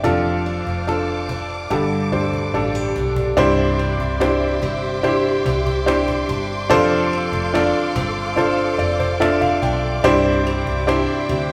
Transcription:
0.00 0.62 F1 medium
0.00 1.25 C3 medium
0.00 0.13 C4 medium
0.00 0.46 D4 soft
0.00 0.83 D4 medium
0.00 0.23 D5 medium
0.04 1.79 F3 medium
0.04 0.83 F4 medium
0.04 0.83 A4 loud
0.04 0.87 A4 medium
0.04 1.69 C5 medium
0.04 1.69 F5 medium
0.04 3.35 A5 medium
0.04 3.34 D6 medium
0.04 cajon bass medium
0.46 1.29 D4 medium
0.66 1.66 F1 medium
0.66 cajon bass medium
0.87 1.67 D4 medium
0.87 1.67 F4 medium
0.87 1.79 A4 medium
0.87 1.67 A4 medium
0.87 cajon slap medium
1.29 2.54 D4 medium
1.29 cajon bass medium
1.70 2.09 G1 medium
1.70 2.92 G2 medium
1.70 3.37 G2 medium
1.70 2.92 D3 medium
1.70 2.10 D4 medium
1.70 2.10 G4 medium
1.70 3.36 G4 medium
1.70 2.11 A4 medium
1.70 3.36 D5 medium
1.70 cajon bass soft
1.70 cajon bass medium
2.12 2.51 D2 medium
2.12 2.52 D4 medium
2.12 2.52 G4 medium
2.12 3.46 A4 medium
2.12 2.52 C5 medium
2.33 cajon bass medium
2.54 2.93 A1 medium
2.54 3.33 D4 medium
2.54 2.75 F4 medium
2.54 3.34 G4 medium
2.54 3.34 A4 medium
2.54 cajon slap soft
2.75 3.46 G4 soft
2.95 3.34 B1 medium
2.95 3.79 D4 medium
2.95 cajon bass medium
3.16 cajon bass medium
3.37 3.96 C2 medium
3.37 4.58 G2 medium
3.37 6.71 C3 medium
3.37 4.16 D4 loud
3.37 4.17 E4 loud
3.37 4.17 G4 loud
3.37 6.68 G4 medium
3.37 4.17 C5 loud
3.37 6.68 E5 medium
3.37 10.00 C6 medium
3.37 11.52 D6 medium
3.37 cajon bass loud
3.79 4.62 C4 medium
3.99 4.58 C2 medium
3.99 cajon bass medium
4.20 5.00 D4 medium
4.20 6.29 D4 medium
4.20 5.00 E4 medium
4.20 5.00 G4 medium
4.20 5.00 C5 medium
4.20 cajon slap loud
4.62 5.41 G1 medium
4.62 5.46 C4 medium
4.62 cajon bass medium
5.03 5.83 D4 medium
5.03 5.83 E4 medium
5.03 5.83 G4 medium
5.03 5.86 G4 medium
5.03 5.83 C5 medium
5.03 cajon bass medium
5.45 6.25 C2 medium
5.45 7.13 C4 medium
5.45 cajon bass loud
5.66 cajon bass medium
5.86 6.66 D4 medium
5.86 6.66 E4 medium
5.86 6.66 G4 medium
5.86 6.79 G4 medium
5.86 6.67 C5 medium
5.86 cajon slap loud
6.08 cajon bass medium
6.29 6.70 G1 medium
6.29 7.16 D4 medium
6.29 cajon bass medium
6.70 7.29 F1 loud
6.70 7.92 C3 medium
6.70 10.04 F3 medium
6.70 7.49 D4 loud
6.70 7.50 F4 medium
6.70 10.01 A4 medium
6.70 7.50 A4 loud
6.70 7.50 C5 loud
6.70 10.01 F5 medium
6.70 cajon bass loud
7.13 7.96 C4 medium
7.32 7.71 F1 loud
7.32 cajon bass medium
7.54 8.33 D4 medium
7.54 9.62 D4 medium
7.54 8.33 F4 medium
7.54 8.33 A4 medium
7.54 8.33 D5 medium
7.54 cajon slap loud
7.95 8.75 G1 medium
7.95 8.79 C4 medium
7.95 cajon bass loud
8.36 9.16 D4 medium
8.36 9.16 F4 medium
8.36 9.16 A4 medium
8.36 9.20 A4 medium
8.36 8.98 C5 medium
8.36 cajon bass medium
8.78 9.58 F1 medium
8.78 10.46 C4 medium
8.78 8.98 D5 medium
8.99 9.19 C5 medium
8.99 cajon bass medium
9.20 10.00 D4 medium
9.20 10.00 F4 medium
9.20 10.00 A4 medium
9.20 10.13 A4 medium
9.20 10.00 D5 medium
9.20 9.40 E5 medium
9.20 cajon slap loud
9.41 9.61 F5 medium
9.41 cajon bass medium
9.62 10.01 B1 loud
9.62 10.50 D4 medium
9.62 10.01 G5 medium
9.62 cajon bass medium
10.04 10.63 C2 loud
10.04 11.25 G2 medium
10.04 11.52 C3 medium
10.04 10.83 D4 loud
10.04 10.83 E4 loud
10.04 11.52 G4 medium
10.04 10.83 G4 loud
10.04 10.84 C5 loud
10.04 11.52 E5 medium
10.04 11.52 G5 medium
10.04 cajon bass loud
10.47 11.29 C4 medium
10.66 11.05 C2 loud
10.66 cajon bass medium
10.87 11.52 D4 medium
10.87 11.52 E4 medium
10.87 11.52 G4 medium
10.87 11.52 C5 loud
10.87 cajon slap medium
11.29 11.52 D2 medium
11.29 11.52 C4 medium
11.29 cajon bass medium

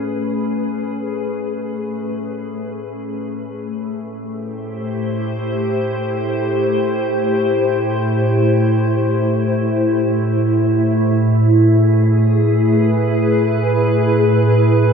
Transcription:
0.00 3.55 A2 medium
0.00 14.93 A3 medium
0.00 3.56 C#4 medium
0.00 3.56 G#4 medium
0.00 3.56 B4 medium
3.56 14.93 A2 medium
4.14 10.74 G4 medium
4.37 14.93 E4 medium
4.37 10.74 C5 medium
11.64 14.93 G#4 medium
12.34 14.93 B4 medium

